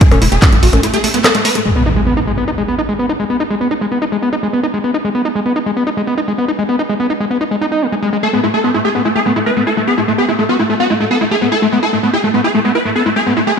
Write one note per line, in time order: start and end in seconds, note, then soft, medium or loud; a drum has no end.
0.01 0.06 A3 medium
0.01 0.06 G#4 loud
0.01 kick loud
0.01 closed hi-hat medium
0.11 0.18 E1 medium
0.11 0.16 A3 medium
0.11 0.18 C#4 medium
0.11 closed hi-hat medium
0.11 percussion blips medium
0.22 0.28 E1 loud
0.22 0.26 A3 medium
0.22 0.25 E4 loud
0.22 open hi-hat loud
0.32 0.38 E1 medium
0.32 0.37 A3 medium
0.32 0.36 G#4 loud
0.32 closed hi-hat medium
0.42 0.47 A3 medium
0.42 0.49 C#4 medium
0.42 kick loud
0.42 clap loud
0.42 closed hi-hat medium
0.52 0.59 A1 medium
0.52 0.57 A3 medium
0.52 0.55 E4 loud
0.52 closed hi-hat medium
0.63 0.69 A1 loud
0.63 0.68 A3 medium
0.63 0.67 F#4 loud
0.63 open hi-hat medium
0.73 0.80 A1 loud
0.73 0.78 A3 medium
0.73 0.80 C#4 medium
0.73 closed hi-hat medium
0.73 percussion blips soft
0.83 0.88 A3 medium
0.83 0.86 E4 loud
0.83 closed hi-hat medium
0.94 0.98 A3 medium
0.94 0.98 G#4 medium
0.94 closed hi-hat medium
1.04 1.08 A3 medium
1.04 1.09 A3 loud
1.04 open hi-hat loud
1.14 1.19 A3 medium
1.14 1.19 B3 loud
1.14 closed hi-hat medium
1.24 1.29 B3 loud
1.24 1.29 A4 medium
1.24 clap loud
1.24 closed hi-hat medium
1.24 percussion blips medium
1.35 1.42 A3 medium
1.35 1.39 A3 medium
1.35 closed hi-hat medium
1.45 1.50 A3 medium
1.45 1.49 B4 medium
1.45 open hi-hat loud
1.55 1.60 A3 medium
1.55 closed hi-hat medium
1.66 1.70 G#3 medium
1.66 impact medium
1.76 1.83 B3 medium
1.86 1.89 D#4 loud
1.96 2.01 G#3 medium
2.07 2.14 B3 medium
2.17 2.20 D#4 loud
2.27 2.32 G#3 medium
2.37 2.45 B3 medium
2.48 2.51 D#4 loud
2.58 2.63 G#3 medium
2.68 2.75 B3 medium
2.79 2.81 D#4 loud
2.89 2.94 G#3 medium
2.99 3.06 B3 medium
3.09 3.12 D#4 loud
3.20 3.24 G#3 medium
3.30 3.37 B3 medium
3.40 3.43 D#4 loud
3.50 3.55 G#3 medium
3.61 3.68 B3 medium
3.71 3.74 D#4 loud
3.81 3.86 G#3 medium
3.92 3.99 B3 medium
4.02 4.05 D#4 loud
4.12 4.17 G#3 medium
4.22 4.29 B3 medium
4.33 4.35 D#4 loud
4.43 4.48 G#3 medium
4.53 4.60 B3 medium
4.63 4.66 D#4 loud
4.74 4.78 G#3 medium
4.84 4.91 B3 medium
4.94 4.97 D#4 loud
5.05 5.09 G#3 medium
5.15 5.22 B3 medium
5.25 5.28 D#4 loud
5.35 5.40 G#3 medium
5.46 5.53 B3 medium
5.56 5.59 D#4 loud
5.66 5.71 G#3 medium
5.76 5.84 B3 medium
5.87 5.90 D#4 loud
5.97 6.02 G#3 medium
6.07 6.14 B3 medium
6.18 6.20 D#4 loud
6.28 6.33 G#3 medium
6.38 6.45 B3 medium
6.48 6.51 D#4 loud
6.59 6.63 G#3 medium
6.69 6.76 B3 medium
6.79 6.82 D#4 loud
6.89 6.94 G#3 medium
7.00 7.07 B3 medium
7.10 7.13 D#4 loud
7.20 7.25 G#3 medium
7.31 7.38 B3 medium
7.41 7.44 D#4 loud
7.51 7.56 G#3 medium
7.61 7.66 D#4 loud
7.72 7.83 D#4 medium
7.82 7.87 G#3 medium
7.92 7.95 G#3 medium
8.02 8.10 G#3 loud
8.13 8.18 G#3 medium
8.23 8.28 A3 medium
8.23 8.28 A4 loud
8.33 8.38 A3 medium
8.33 8.40 B3 medium
8.44 8.48 A3 medium
8.44 8.46 E4 loud
8.54 8.59 A3 medium
8.54 8.58 A4 medium
8.64 8.69 A3 medium
8.64 8.71 B3 medium
8.74 8.79 A3 medium
8.74 8.77 E4 loud
8.85 8.89 A3 medium
8.85 8.89 G#4 loud
8.95 8.99 A3 medium
8.95 9.02 B3 medium
9.05 9.10 A3 medium
9.05 9.08 E4 loud
9.15 9.20 A3 medium
9.15 9.20 G#4 medium
9.26 9.30 A3 medium
9.26 9.33 B3 medium
9.36 9.41 A3 medium
9.36 9.39 E4 loud
9.46 9.51 A3 medium
9.46 9.51 B4 medium
9.57 9.61 A3 medium
9.57 9.64 B3 medium
9.67 9.70 E4 loud
9.67 9.71 A4 medium
9.77 9.82 A3 medium
9.87 9.95 B3 medium
9.87 9.92 G#4 loud
9.98 10.02 A3 medium
9.98 10.01 E4 loud
10.08 10.12 A3 medium
10.08 10.13 A3 medium
10.18 10.25 B3 medium
10.18 10.23 G#4 medium
10.29 10.33 A3 medium
10.29 10.31 E4 loud
10.39 10.44 A3 medium
10.39 10.43 A3 medium
10.49 10.56 B3 medium
10.49 10.54 F#4 medium
10.59 10.64 A3 medium
10.59 10.62 E4 loud
10.70 10.74 A3 medium
10.80 10.87 B3 medium
10.80 10.84 F#4 medium
10.90 10.95 A3 medium
10.90 10.93 E4 loud
11.00 11.05 A3 medium
11.11 11.18 B3 medium
11.11 11.15 A4 medium
11.21 11.25 A3 medium
11.21 11.24 E4 loud
11.31 11.36 A3 medium
11.31 11.36 G#4 medium
11.42 11.46 A3 medium
11.42 11.49 B3 medium
11.52 11.55 E4 loud
11.52 11.56 A4 loud
11.62 11.67 A3 medium
11.72 11.77 A3 medium
11.72 11.79 B3 medium
11.83 11.85 E4 loud
11.83 11.87 A4 medium
11.93 11.98 A3 medium
11.93 11.97 A3 medium
12.03 12.08 A3 medium
12.03 12.10 B3 medium
12.13 12.16 E4 loud
12.13 12.18 G#4 loud
12.24 12.28 A3 medium
12.34 12.38 A3 medium
12.34 12.41 B3 medium
12.44 12.47 E4 loud
12.44 12.49 G#4 medium
12.54 12.59 A3 medium
12.65 12.69 A3 medium
12.65 12.72 B3 medium
12.75 12.78 E4 loud
12.75 12.80 B4 medium
12.85 12.90 A3 medium
12.96 13.03 B3 medium
12.96 13.00 A4 medium
13.06 13.10 A3 medium
13.06 13.09 E4 loud
13.16 13.21 A3 medium
13.16 13.21 G#4 medium
13.26 13.31 A3 medium
13.26 13.34 B3 medium
13.37 13.41 A3 medium
13.37 13.40 E4 loud
13.47 13.52 A3 medium
13.47 13.52 G#4 medium